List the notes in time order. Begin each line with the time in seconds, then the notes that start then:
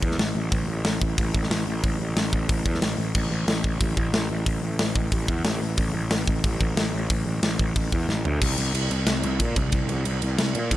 0.02 E2, kick
0.11 snare
0.18 A1, snare, open hi-hat
0.35 A1
0.52 A1, kick, open hi-hat
0.68 A1
0.84 A1, snare, open hi-hat
1.01 A1, kick
1.18 A1, kick, open hi-hat
1.34 A1, kick
1.43 snare
1.51 A1, snare, open hi-hat
1.67 A1
1.83 A1, kick, open hi-hat
2.00 A1
2.16 A1, snare, open hi-hat
2.33 A1, kick
2.49 A1, kick, open hi-hat
2.66 E2, kick
2.74 snare
2.81 A1, snare, open hi-hat
2.98 A1
3.15 A1, kick, crash
3.31 A1
3.48 A1, snare, open hi-hat
3.64 A1, kick
3.81 A1, kick, open hi-hat
3.97 A1, kick
4.13 A1, snare, open hi-hat
4.30 A1
4.46 A1, kick, open hi-hat
4.63 A1
4.79 A1, snare, open hi-hat
4.95 A1, kick
5.12 A1, kick, open hi-hat
5.28 E2, kick
5.45 A1, snare, open hi-hat
5.62 A1
5.77 A1, kick, open hi-hat
5.94 A1
6.10 A1, snare, open hi-hat
6.27 A1, kick
6.44 A1, kick, open hi-hat
6.60 A1, kick
6.77 A1, snare, open hi-hat
6.93 A1
7.10 A1, kick, open hi-hat
7.26 A1
7.42 A1, snare, open hi-hat
7.59 A1, kick
7.76 A1, kick, open hi-hat
7.92 E2, kick
8.09 A1, snare
8.25 D2, floor tom
8.41 C2, kick, crash
8.58 C2, ride
8.74 C2, ride
8.90 C2, ride
9.07 C2, snare, ride
9.23 C2, ride
9.40 A#2, kick, ride
9.56 C2, kick, ride
9.72 C2, kick, ride
9.89 C2, ride
10.05 C2, ride
10.22 C2, ride
10.38 C2, snare, ride
10.55 A#2, ride
10.71 E2, kick, ride